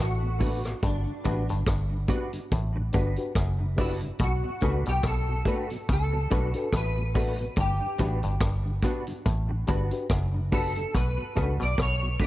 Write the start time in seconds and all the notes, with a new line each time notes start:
0.00 A1 A2 F#4
0.23 B2
0.39 D3 A3 B3 D4 F#4 A4 B4, kick, open hi-hat
0.64 B2, cross-stick, closed hi-hat
0.82 G1 G2 D4, kick, closed hi-hat
1.07 G2 D3
1.24 A1 A2 G3 B3 D4 F#4 G4 B4, kick, closed hi-hat
1.48 G1 G2 D3, closed hi-hat
1.67 G1 G2, kick, cross-stick, closed hi-hat
1.91 G2 D3
2.08 G3 B3 D4 F#4 G4 B4, kick, closed hi-hat
2.33 G2 D3, closed hi-hat
2.52 A1 A2, kick, closed hi-hat
2.75 G2 D3, muted clean electric guitar stroke
2.93 G1 G2 G3 B3 D4 F#4 G4 B4, kick, closed hi-hat
3.16 D4 F#4 G4 B4, closed hi-hat
3.35 F#1 F#2, kick, cross-stick, closed hi-hat
3.60 G2 D3
3.76 G3 B3 D4 F#4 G4 B4, kick, open hi-hat
3.80 E4
4.00 G2 D3, closed hi-hat
4.19 B1 B2, kick, closed hi-hat
4.23 F#4
4.44 B2 F#3
4.61 C#2 C#3 A3 B3 D4 F#4 A4 B4, kick, closed hi-hat
4.86 B1 B2 F#3 G4, closed hi-hat
5.03 B1 B2 A4, kick, cross-stick, closed hi-hat
5.29 B2 F#3
5.45 A3 B3 D4 F#4 A4 B4, kick, closed hi-hat
5.70 B2 F#3, closed hi-hat
5.89 C#2 C#3 A4, kick, closed hi-hat
6.13 B2 F#3, muted clean electric guitar stroke
6.30 B1 B2 A3 B3 D4 F#4 A4 B4, kick, closed hi-hat
6.54 D4 F#4 A4 B4, closed hi-hat
6.73 A1 A2, kick, cross-stick, closed hi-hat
6.77 B4
6.97 B2 F#3
7.14 A3 B3 D4 F#4 A4 B4, kick, open hi-hat
7.38 B2 F#3, closed hi-hat
7.56 G1 G2, kick, closed hi-hat
7.60 G4
7.81 G2 D3
7.98 A1 A2 G3 B3 D4 F#4 G4 B4, kick, closed hi-hat
8.23 G1 G2 D3, closed hi-hat
8.41 G1 G2, kick, cross-stick, closed hi-hat
8.65 G2 D3
8.82 G3 B3 D4 F#4 G4 B4, kick, cross-stick, closed hi-hat
9.07 G2 D3, closed hi-hat
9.26 A1 A2, kick, closed hi-hat
9.49 G2 D3, muted clean electric guitar stroke
9.67 G1 G2 G3 B3 D4 F#4 G4 B4, kick, closed hi-hat
9.91 D4 F#4 G4 B4, closed hi-hat
10.10 F#1 F#2, kick, cross-stick, closed hi-hat
10.34 G2 D3
10.52 G3 B3 D4 F#4 G4 A4 B4, kick, open hi-hat
10.76 G2 D3, closed hi-hat
10.95 B1 B2 B4, kick, closed hi-hat
11.17 B2 F#3
11.35 C#2 C#3 A3 B3 D4 F#4 A4 B4, kick, closed hi-hat
11.59 B1 B2 F#3 D5, closed hi-hat
11.78 B1 B2 C#5, kick, cross-stick, closed hi-hat
12.02 B2 F#3
12.20 A3 B3 D4 F#4 A4 B4, kick, closed hi-hat